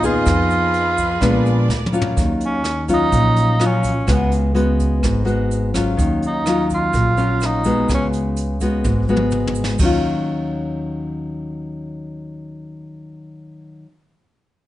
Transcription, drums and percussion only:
0.03 kick soft
0.03 closed hi-hat soft
0.03 shaker medium
0.26 kick medium
0.26 cross-stick medium
0.26 closed hi-hat soft
0.26 shaker medium
0.50 closed hi-hat soft
0.50 shaker soft
0.74 closed hi-hat soft
0.98 kick soft
0.98 closed hi-hat soft
0.98 shaker medium
1.21 kick medium
1.21 cross-stick medium
1.21 closed hi-hat soft
1.21 shaker medium
1.46 closed hi-hat soft
1.46 shaker soft
1.70 snare soft
1.70 shaker medium
1.86 mid tom soft
1.94 shaker medium
2.02 floor tom medium
2.17 kick medium
2.17 closed hi-hat medium
2.17 shaker medium
2.41 closed hi-hat soft
2.41 shaker soft
2.64 cross-stick medium
2.64 closed hi-hat soft
2.89 kick soft
2.89 closed hi-hat soft
2.89 shaker medium
3.12 kick medium
3.12 closed hi-hat soft
3.12 shaker medium
3.36 closed hi-hat soft
3.36 shaker soft
3.60 cross-stick medium
3.60 closed hi-hat soft
3.60 shaker soft
3.84 kick soft
3.84 closed hi-hat soft
3.84 shaker medium
4.08 kick medium
4.08 cross-stick medium
4.08 closed hi-hat medium
4.08 shaker medium
4.32 closed hi-hat soft
4.32 shaker soft
4.56 closed hi-hat soft
4.80 kick soft
4.80 closed hi-hat soft
4.80 shaker medium
5.03 kick medium
5.03 cross-stick medium
5.03 closed hi-hat soft
5.03 shaker medium
5.27 closed hi-hat soft
5.27 shaker soft
5.51 closed hi-hat soft
5.51 shaker medium
5.74 kick soft
5.74 cross-stick medium
5.74 closed hi-hat soft
5.74 shaker medium
5.99 kick medium
5.99 closed hi-hat soft
5.99 shaker medium
6.22 closed hi-hat soft
6.22 shaker soft
6.46 cross-stick medium
6.46 closed hi-hat soft
6.46 shaker soft
6.70 kick soft
6.70 closed hi-hat soft
6.70 shaker medium
6.93 kick medium
6.93 closed hi-hat soft
6.93 shaker medium
7.17 closed hi-hat soft
7.17 shaker soft
7.41 cross-stick medium
7.41 closed hi-hat soft
7.41 shaker medium
7.64 kick soft
7.64 closed hi-hat soft
7.64 shaker medium
7.89 kick medium
7.89 cross-stick medium
7.89 closed hi-hat medium
7.89 shaker medium
8.13 closed hi-hat soft
8.13 shaker soft
8.36 closed hi-hat soft
8.36 shaker soft
8.60 kick soft
8.60 closed hi-hat soft
8.60 shaker medium
8.84 kick medium
8.84 high tom soft
8.84 shaker medium
9.00 kick soft
9.08 shaker soft
9.16 mid tom soft
9.31 mid tom soft
9.31 shaker soft
9.47 floor tom medium
9.55 shaker medium
9.64 snare medium
9.79 kick medium
9.79 crash medium
9.79 shaker medium

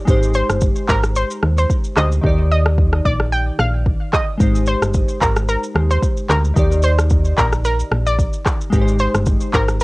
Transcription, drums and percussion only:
0.08 kick loud
0.08 shaker medium
0.23 shaker medium
0.34 shaker medium
0.50 cross-stick loud
0.50 shaker medium
0.61 kick loud
0.61 shaker medium
0.76 shaker medium
0.89 kick medium
0.89 clap loud
0.89 shaker medium
1.03 cross-stick medium
1.03 shaker medium
1.16 shaker medium
1.31 shaker medium
1.43 cross-stick medium
1.58 shaker medium
1.70 kick loud
1.70 shaker medium
1.84 shaker soft
1.97 cross-stick medium
1.97 clap medium
1.97 shaker medium
2.12 shaker medium
2.24 kick loud
2.66 cross-stick loud
2.78 kick loud
2.93 cross-stick medium
3.05 kick medium
3.20 cross-stick medium
3.59 cross-stick loud
3.86 kick medium
4.13 kick loud
4.13 cross-stick medium
4.13 clap medium
4.40 kick loud
4.40 shaker medium
4.55 shaker medium
4.66 shaker medium
4.82 cross-stick loud
4.82 shaker medium
4.94 kick loud
4.94 shaker medium
5.08 shaker soft
5.22 kick medium
5.22 clap loud
5.22 shaker medium
5.36 cross-stick loud
5.36 shaker medium
5.48 shaker medium
5.63 shaker medium
5.76 cross-stick loud
5.91 shaker medium
6.02 kick loud
6.02 shaker medium
6.17 shaker soft
6.30 cross-stick medium
6.30 clap medium
6.30 shaker medium
6.45 shaker medium
6.57 kick loud
6.57 shaker medium
6.72 shaker medium
6.83 shaker medium
6.99 cross-stick loud
6.99 shaker medium
7.10 kick loud
7.10 shaker medium
7.25 shaker soft
7.38 kick medium
7.38 clap medium
7.38 shaker medium
7.52 cross-stick medium
7.52 shaker medium
7.64 shaker medium
7.80 shaker medium
7.92 cross-stick loud
8.07 shaker medium
8.19 kick medium
8.19 shaker medium
8.33 shaker soft
8.46 kick medium
8.46 cross-stick medium
8.46 clap medium
8.46 shaker medium
8.61 shaker medium
8.73 kick loud
8.73 shaker medium
8.88 shaker medium
8.99 shaker medium
9.15 cross-stick loud
9.15 shaker medium
9.26 kick loud
9.26 shaker medium
9.41 shaker medium
9.54 kick medium
9.54 clap medium
9.54 shaker medium
9.68 cross-stick medium
9.68 shaker medium
9.80 shaker medium

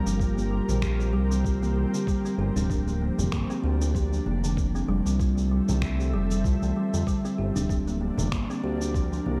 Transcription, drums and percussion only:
0.06 muted conga soft
0.06 cabasa medium
0.20 kick loud
0.20 cabasa medium
0.38 cabasa soft
0.68 high conga medium
0.68 low conga medium
0.68 cabasa medium
0.82 finger snap medium
0.82 kick loud
0.82 cabasa medium
1.01 cabasa soft
1.32 muted conga soft
1.32 cabasa medium
1.45 kick loud
1.45 cabasa medium
1.62 high conga medium
1.62 cabasa soft
1.94 cabasa medium
2.07 kick loud
2.07 cabasa medium
2.26 cabasa soft
2.56 muted conga soft
2.56 low conga medium
2.56 cabasa medium
2.70 kick loud
2.70 cabasa medium
2.88 cabasa soft
3.19 high conga medium
3.19 low conga medium
3.19 cabasa medium
3.32 finger snap medium
3.32 kick loud
3.32 cabasa medium
3.50 cabasa soft
3.82 cabasa medium
3.95 kick loud
3.95 cabasa medium
4.13 cabasa soft
4.26 muted conga soft
4.26 high conga medium
4.44 cabasa medium
4.57 kick loud
4.57 cabasa medium
4.76 cabasa soft
5.06 muted conga soft
5.06 cabasa medium
5.20 kick loud
5.20 cabasa medium
5.38 cabasa soft
5.68 high conga medium
5.68 low conga medium
5.68 cabasa medium
5.82 finger snap medium
5.82 kick loud
5.82 cabasa soft
6.00 cabasa soft
6.30 muted conga soft
6.30 cabasa medium
6.44 kick loud
6.44 cabasa medium
6.62 high conga medium
6.62 cabasa soft
6.94 cabasa medium
7.07 kick medium
7.07 cabasa medium
7.25 cabasa soft
7.55 muted conga soft
7.55 low conga medium
7.55 cabasa medium
7.69 kick loud
7.69 cabasa medium
7.88 cabasa soft
8.18 high conga medium
8.18 low conga medium
8.18 cabasa medium
8.32 finger snap medium
8.32 kick loud
8.32 cabasa soft
8.51 cabasa soft
8.82 cabasa medium
8.94 kick loud
8.94 cabasa medium
9.13 cabasa soft
9.26 muted conga soft
9.26 high conga medium

